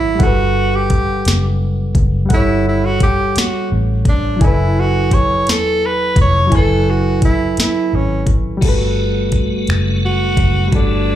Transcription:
Already playing: fingered electric bass G#1, reed electric piano F#3 E4 G#4 A4 C#5, tenor saxophone E4
0.15 reed electric piano G3 F#5
0.20 fingered electric bass G1, tenor saxophone F#4, reed electric piano A4, kick, closed hi-hat
0.27 reed electric piano B4
0.76 tenor saxophone G4
0.90 kick, closed hi-hat
1.25 fingered electric bass F#1, snare, closed hi-hat
1.95 fingered electric bass F#1, kick, closed hi-hat
2.25 reed electric piano G3 F#5
2.30 fingered electric bass G1, tenor saxophone E4, reed electric piano A4, kick, closed hi-hat
2.36 reed electric piano C#5
2.69 tenor saxophone E4
2.86 tenor saxophone F#4
3.00 tenor saxophone G4, kick, closed hi-hat
3.36 tenor saxophone F#4, muted fingered electric bass stroke, snare, closed hi-hat
3.72 fingered electric bass A1
4.05 tenor saxophone D4, kick, closed hi-hat
4.36 reed electric piano F#3 E4
4.41 fingered electric bass F#1, tenor saxophone E4, reed electric piano A4 G#5, kick, closed hi-hat
4.47 reed electric piano B4
4.80 tenor saxophone F#4
5.11 tenor saxophone C#5, kick, closed hi-hat
5.47 fingered electric bass E1, tenor saxophone A4, snare, closed hi-hat
5.86 tenor saxophone B4
6.16 fingered electric bass F1, kick, closed hi-hat
6.21 tenor saxophone C#5
6.47 reed electric piano F#3 E4
6.52 fingered electric bass F#1, reed electric piano A4 G#5, kick, closed hi-hat
6.56 tenor saxophone A4, reed electric piano B4
6.90 tenor saxophone F#4
7.22 tenor saxophone E4, kick, closed hi-hat
7.57 tenor saxophone E4, muted fingered electric bass stroke, snare, closed hi-hat
7.93 fingered electric bass G#1, tenor saxophone C#4
8.27 kick, closed hi-hat
8.57 reed electric piano G3 F#4
8.61 fingered electric bass G1, tonewheel organ A3 B3 F#4, reed electric piano A4, kick, closed hi-hat, crash
8.69 reed electric piano B4
9.32 kick, closed hi-hat
9.67 fingered electric bass F#1, finger snap, closed hi-hat
10.05 tenor saxophone F#4
10.37 fingered electric bass F#1, kick, closed hi-hat
10.68 reed electric piano G3 F#4
10.72 fingered electric bass G1, tonewheel organ E3, tenor saxophone D4, reed electric piano A4, kick, closed hi-hat
10.79 reed electric piano D5

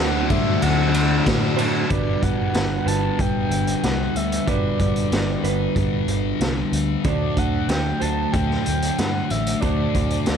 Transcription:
Already playing: overdriven electric guitar D3 F#3, clean electric guitar D3 F#3 A3 D4 F#4 C5, distorted electric guitar D3 A3 D4, soft synth lead F#5
0.00 picked electric bass D2, overdriven electric guitar A3 D4 F#4 C5
0.30 picked electric bass G2, overdriven electric guitar D3 F#3 A3 D4 F#4 C5, soft synth lead E5, kick, ride
0.62 picked electric bass D2, overdriven electric guitar D3 F#3 A3 D4 F#4 C5, soft synth lead F#5, ride
0.94 overdriven electric guitar D3 F#3 A3 D4 F#4 C5, ride
1.26 picked electric bass A2, overdriven electric guitar D3 F#3 A3 D4 F#4 C5, kick, snare, ride
1.57 overdriven electric guitar D3 F#3 A3 D4 F#4, clean electric guitar D3 F#3 A3 D4 F#4 C5, ride
1.61 overdriven electric guitar C5
1.89 picked electric bass G1, distorted electric guitar G2 D3, clean electric guitar G3 B3 D4 F#4 B4, soft synth lead D5, kick, closed hi-hat
1.93 distorted electric guitar G3
2.22 picked electric bass G1, soft synth lead F#5, kick, closed hi-hat
2.54 picked electric bass G1, snare, closed hi-hat
2.86 picked electric bass G1, clean electric guitar G3 B3 D4 F#4 B4, soft synth lead A5, closed hi-hat
3.19 picked electric bass G1, distorted electric guitar G2 D3 G3, soft synth lead G5, kick, closed hi-hat
3.51 picked electric bass G1, closed hi-hat
3.67 closed hi-hat
3.83 picked electric bass C2, soft synth lead F#5, snare, closed hi-hat
4.15 picked electric bass D2, soft synth lead E5, closed hi-hat
4.32 closed hi-hat
4.47 picked electric bass G1, distorted electric guitar G2 D3 G3, clean electric guitar G3 B3 D4 F#4 B4, soft synth lead D5, kick, closed hi-hat
4.79 picked electric bass G1, kick, closed hi-hat
4.96 closed hi-hat
5.12 picked electric bass G1, snare, closed hi-hat
5.44 picked electric bass G1, clean electric guitar G3 B3 D4 F#4 B4, closed hi-hat
5.76 picked electric bass G1, distorted electric guitar G2 D3 G3, kick, closed hi-hat
6.08 picked electric bass G1, closed hi-hat
6.40 picked electric bass C2, snare, closed hi-hat
6.72 picked electric bass D2, closed hi-hat
7.04 picked electric bass D2, distorted electric guitar D3 A3 D4, clean electric guitar D3 F#3 A3 D4 F#4 C5, soft synth lead D5, kick, closed hi-hat
7.37 picked electric bass D2, soft synth lead F#5, kick, closed hi-hat
7.69 picked electric bass D2, soft synth lead G5, snare, closed hi-hat
8.00 picked electric bass D2, clean electric guitar D3 F#3 A3 D4 F#4 C5, soft synth lead A5, closed hi-hat
8.32 picked electric bass D2, distorted electric guitar D3 A3 D4, soft synth lead G5, kick, closed hi-hat
8.51 snare
8.65 picked electric bass D2, soft synth lead G5, closed hi-hat
8.82 closed hi-hat
8.98 picked electric bass G2, soft synth lead F#5, snare, closed hi-hat
9.30 picked electric bass A1, soft synth lead E5, closed hi-hat
9.46 closed hi-hat
9.60 picked electric bass D2, clean electric guitar D3 F#3 A3 D4 F#4 C5, distorted electric guitar D3 A3 D4, soft synth lead D5, kick, closed hi-hat
9.94 picked electric bass D2, kick, closed hi-hat
10.10 closed hi-hat
10.26 picked electric bass D2, snare, closed hi-hat

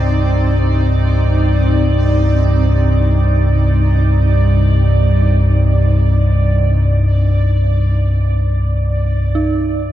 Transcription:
Already playing: synth drone C2 G2, ambient pad C4 D#4 D5, synth texture D5
9.35 synth drone C2 G2, synth bell D#4

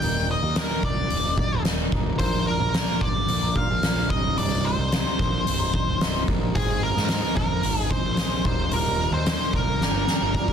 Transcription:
Already playing: lead electric guitar G5
0.01 picked electric bass D#1, clean electric guitar D#2 A#2 D#3 G3 A#3 D#4, open hi-hat
0.31 lead electric guitar D#5
0.42 picked electric bass D#2, clean electric guitar D#3 G3 A#3 D#4
0.55 clean electric guitar D#2 A#2 D#3 G3 A#3 D#4, lead electric guitar A#4, snare, open hi-hat
0.69 clean electric guitar D#3 G3 A#3 D#4
0.83 picked electric bass C2, lead electric guitar D5, kick
0.97 muted clean electric guitar stroke
1.10 picked electric bass D#1, open hi-hat
1.24 clean electric guitar D#3 G3 A#3 D#4
1.37 clean electric guitar D#3 G3 A#3 D#4, kick
1.51 picked electric bass D#1, muted clean electric guitar stroke
1.64 clean electric guitar D#2 A#2 D#3 G3 A#3 D#4, snare, open hi-hat
1.92 picked electric bass C1, clean electric guitar D#3 G3 A#3 D#4, kick
2.06 clean electric guitar D#3 G3 A#3 D#4
2.18 picked electric bass A#1, clean electric guitar A#2 F3 A#3 D4 F4 A#4, lead electric guitar C5, kick, open hi-hat
2.47 lead electric guitar A#4
2.60 picked electric bass A#1, clean electric guitar A#3 D4 F4 A#4
2.73 clean electric guitar A#2 F3 A#3 D4 F4 A#4, snare, open hi-hat
2.87 clean electric guitar A#3 D4 F4 A#4
3.01 picked electric bass G1, lead electric guitar D5, kick
3.16 muted clean electric guitar stroke
3.28 picked electric bass A#1, open hi-hat
3.43 clean electric guitar A#3 D4 F4 A#4
3.56 clean electric guitar A#3 D4 F4 A#4, lead electric guitar F5, kick
3.70 picked electric bass A#1
3.83 clean electric guitar A#2 F3 A#3 D4 F4 A#4, snare, open hi-hat
4.10 picked electric bass C1, clean electric guitar C2 G2 C3 G3 D#4, lead electric guitar D#5, kick
4.24 clean electric guitar C3 G3 D#4
4.38 picked electric bass C1, clean electric guitar C2 G2 C3 G3 D#4, lead electric guitar D5, open hi-hat
4.65 lead electric guitar C5
4.78 picked electric bass C2, clean electric guitar C3 G3 D#4
4.92 clean electric guitar C2 G2 C3 G3 D#4, snare, open hi-hat
5.06 clean electric guitar C3 G3 D#4
5.19 picked electric bass A#1, kick
5.33 muted clean electric guitar stroke
5.47 picked electric bass C1, open hi-hat
5.59 clean electric guitar C3 G3 D#4
5.72 clean electric guitar G2 C3 G3 D#4, kick
5.87 picked electric bass C1, muted clean electric guitar stroke
6.00 clean electric guitar C2 G2 C3 G3 D#4, snare, open hi-hat
6.27 picked electric bass A#1, clean electric guitar G2 C3 G3 D#4, kick
6.41 clean electric guitar C3 G3 D#4
6.54 picked electric bass G#1, clean electric guitar G#2 D#3 G#3 C4 D#4 G#4, lead electric guitar G#4, kick, open hi-hat
6.83 lead electric guitar A#4
6.95 picked electric bass G#2, clean electric guitar G#3 C4 D#4 G#4, snare
7.08 clean electric guitar G#2 D#3 G#3 C4 D#4 G#4, snare, open hi-hat
7.22 clean electric guitar G#3 C4 D#4 G#4
7.36 picked electric bass F2, lead electric guitar A#4, kick
7.51 muted clean electric guitar stroke
7.63 picked electric bass G#1, open hi-hat
7.77 clean electric guitar G#3 C4 D#4 G#4, lead electric guitar G#4
7.90 clean electric guitar G#3 C4 D#4 G#4, lead electric guitar C5, kick
8.05 picked electric bass A#1, muted clean electric guitar stroke
8.17 clean electric guitar G#2 D#3 G#3 C4 D#4 G#4, snare, open hi-hat
8.44 picked electric bass D#1, clean electric guitar D#2 A#2 D#3 G3 A#3 D#4, lead electric guitar C5, kick
8.59 clean electric guitar D#3 G3 A#3 D#4
8.71 picked electric bass D#1, clean electric guitar D#2 A#2 D#3 G3 A#3 D#4, lead electric guitar A#4, open hi-hat
9.12 picked electric bass D#2, clean electric guitar G3 A#3 D#4, lead electric guitar C5
9.16 clean electric guitar D#3
9.26 clean electric guitar D#2 A#2 D#3 G3 A#3 D#4, snare, open hi-hat
9.40 clean electric guitar D#3 G3 A#3 D#4
9.53 picked electric bass C2, lead electric guitar A#4, kick
9.67 muted clean electric guitar stroke
9.80 picked electric bass G1, clean electric guitar G2 D3 G3 A#3 D4 G4, snare
9.93 clean electric guitar G3 A#3 D4 G4
10.07 clean electric guitar G3 A#3 D4 G4, snare
10.21 picked electric bass G1, muted clean electric guitar stroke
10.34 clean electric guitar G2 D3 G3 A#3 D4 G4, kick
10.48 kick

